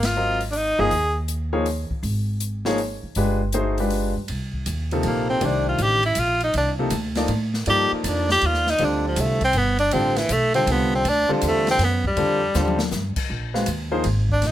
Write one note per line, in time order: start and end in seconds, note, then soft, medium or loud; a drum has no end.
0.00 0.75 G#1 medium
0.00 snare medium
0.00 ride medium
0.06 0.42 F4 medium
0.17 0.39 F#3 medium
0.17 0.39 C4 medium
0.17 0.39 F4 medium
0.17 0.39 A#4 medium
0.17 0.39 D#5 medium
0.41 open hi-hat soft
0.51 0.58 D4 medium
0.51 open hi-hat soft
0.57 0.82 D#4 medium
0.78 0.90 G1 medium
0.78 0.90 F3 medium
0.78 0.90 A#3 medium
0.78 0.90 D#4 medium
0.78 0.90 G#4 medium
0.78 1.17 G#4 medium
0.78 0.91 D#5 medium
0.91 1.87 D#2 medium
0.91 open hi-hat soft
1.28 closed hi-hat medium
1.53 1.65 F3 medium
1.53 1.65 A#3 medium
1.53 1.65 D#4 medium
1.53 1.65 G#4 medium
1.53 1.65 C#5 medium
1.66 open hi-hat soft
1.90 muted upright bass stroke soft
1.90 kick medium
2.03 2.99 G#1 medium
2.03 open hi-hat soft
2.40 closed hi-hat medium
2.65 2.77 F3 medium
2.65 2.77 A#3 medium
2.65 2.78 D#4 medium
2.65 2.78 G#4 medium
2.65 2.78 C#5 medium
2.65 snare medium
2.78 open hi-hat soft
3.03 muted upright bass stroke soft
3.15 4.12 G1 medium
3.15 3.39 G#3 medium
3.15 3.39 D4 medium
3.15 3.39 F4 medium
3.15 3.39 G4 medium
3.15 3.39 B4 medium
3.15 open hi-hat medium
3.52 3.77 A3 medium
3.52 3.76 D#4 medium
3.52 3.77 F#4 medium
3.52 3.77 G#4 medium
3.52 3.77 C5 medium
3.52 closed hi-hat medium
3.78 4.12 G#3 medium
3.78 4.12 D4 medium
3.78 4.12 F4 medium
3.78 4.12 G4 medium
3.78 4.12 B4 medium
3.78 open hi-hat soft
3.90 open hi-hat medium
4.17 4.28 G2 medium
4.28 4.66 C2 medium
4.28 ride medium
4.54 kick soft
4.66 5.03 D#2 medium
4.66 hi-hat pedal medium
4.66 ride medium
4.91 5.40 C3 medium
4.91 5.40 F3 medium
4.91 5.40 A#3 medium
4.91 5.40 D#4 medium
4.91 5.40 A4 medium
4.91 ride soft
5.03 5.40 A#1 medium
5.03 5.29 A#3 medium
5.03 ride medium
5.30 5.47 C4 medium
5.41 5.78 C2 medium
5.41 5.99 D#3 medium
5.41 5.99 A3 medium
5.41 5.99 D4 medium
5.41 5.99 G4 medium
5.41 5.99 C5 medium
5.41 ride medium
5.45 5.68 D4 medium
5.69 5.84 F4 medium
5.78 6.15 A1 medium
5.78 hi-hat pedal medium
5.78 ride medium
5.83 6.05 G4 medium
6.03 6.21 E4 medium
6.03 ride soft
6.15 6.53 A#1 medium
6.15 hi-hat pedal medium
6.15 ride medium
6.19 6.43 F4 medium
6.40 6.55 D#4 medium
6.40 ride soft
6.54 6.90 C2 medium
6.54 6.71 D4 medium
6.54 ride medium
6.79 6.91 C3 medium
6.79 6.91 F3 medium
6.79 6.91 A#3 medium
6.79 6.91 D#4 medium
6.79 6.91 A4 medium
6.90 7.28 D2 loud
6.90 hi-hat pedal medium
6.90 ride medium
7.15 7.28 F3 medium
7.15 7.28 A#3 medium
7.15 7.28 D#4 medium
7.15 7.28 A4 medium
7.15 7.28 D5 medium
7.15 snare medium
7.15 ride soft
7.28 7.65 A2 medium
7.28 ride medium
7.54 snare soft
7.66 7.90 G2 medium
7.66 8.72 F3 medium
7.66 8.72 A#3 medium
7.66 8.72 D#4 medium
7.66 7.92 G4 medium
7.66 8.72 A4 medium
7.66 8.72 D5 medium
7.66 ride medium
7.92 8.09 A#3 soft
7.92 muted upright bass stroke soft
8.04 8.41 F2 medium
8.04 8.31 D4 medium
8.04 hi-hat pedal medium
8.04 ride medium
8.29 8.48 G4 loud
8.29 snare medium
8.41 8.79 D#2 medium
8.41 ride medium
8.46 8.71 F4 medium
8.54 snare soft
8.67 8.86 D#4 medium
8.67 snare soft
8.78 9.16 D2 medium
8.78 9.37 D3 medium
8.78 9.37 G3 medium
8.78 9.37 C4 medium
8.78 9.37 F4 medium
8.78 9.37 A4 medium
8.78 ride medium
8.84 9.07 D4 medium
9.08 9.22 F3 medium
9.16 9.53 C2 medium
9.16 hi-hat pedal medium
9.16 ride medium
9.20 9.44 A3 medium
9.41 9.59 C4 medium
9.41 kick medium
9.41 ride soft
9.53 9.91 G1 medium
9.53 ride medium
9.58 9.79 B3 medium
9.78 9.95 D4 loud
9.78 ride medium
9.91 10.28 A1 medium
9.91 10.15 D3 medium
9.91 10.15 G3 medium
9.91 10.15 C4 medium
9.91 10.19 C4 medium
9.91 10.15 F4 medium
9.91 10.15 A4 medium
9.91 ride medium
10.16 10.34 E3 medium
10.16 snare medium
10.16 ride medium
10.29 10.66 B1 medium
10.29 10.55 A3 medium
10.29 hi-hat pedal medium
10.29 ride medium
10.54 11.02 D3 medium
10.54 11.02 G3 medium
10.54 11.02 C4 medium
10.54 10.73 C4 medium
10.54 11.02 F4 medium
10.54 11.02 A4 medium
10.54 ride medium
10.66 11.03 C2 loud
10.66 ride medium
10.72 10.94 B3 medium
10.95 11.10 C4 medium
11.04 11.27 D2 medium
11.04 ride medium
11.09 11.32 D4 medium
11.29 11.77 D3 medium
11.29 11.77 G3 medium
11.29 11.77 C4 medium
11.29 11.77 F4 medium
11.29 11.77 A4 medium
11.29 muted upright bass stroke soft
11.34 11.49 F3 medium
11.41 11.78 E2 loud
11.41 hi-hat pedal medium
11.41 ride medium
11.48 11.70 A3 medium
11.67 11.86 C4 loud
11.67 snare medium
11.67 ride soft
11.79 12.16 F#2 loud
11.79 snare soft
11.79 ride medium
11.84 12.07 B3 medium
12.04 12.90 G3 medium
12.04 kick medium
12.16 12.53 F2 medium
12.16 12.40 D3 medium
12.16 12.40 G3 medium
12.16 12.40 C4 medium
12.16 12.40 F4 medium
12.16 12.40 A4 medium
12.16 ride medium
12.54 12.91 D#2 medium
12.54 12.77 D3 medium
12.54 12.77 G3 medium
12.54 12.78 C4 medium
12.54 12.78 F4 medium
12.54 12.78 A4 medium
12.54 snare medium
12.54 hi-hat pedal medium
12.68 high tom medium
12.79 snare medium
12.91 13.15 G2 medium
12.91 snare medium
12.91 hi-hat pedal medium
13.16 muted upright bass stroke soft
13.16 kick medium
13.16 crash medium
13.30 13.66 A#1 medium
13.54 13.66 G#3 medium
13.54 13.66 C4 medium
13.54 13.66 F#4 medium
13.54 13.66 B4 medium
13.54 13.66 F5 medium
13.54 snare soft
13.66 14.04 D#2 medium
13.66 hi-hat pedal medium
13.66 ride medium
13.91 14.03 F3 medium
13.91 14.03 A#3 medium
13.91 14.04 D#4 medium
13.91 14.03 G#4 medium
13.91 14.03 C5 medium
14.04 14.41 G#1 medium
14.04 ride medium
14.29 14.48 D4 medium
14.29 kick medium
14.42 14.52 A#1 medium
14.42 snare soft
14.42 ride medium
14.47 14.52 D#4 medium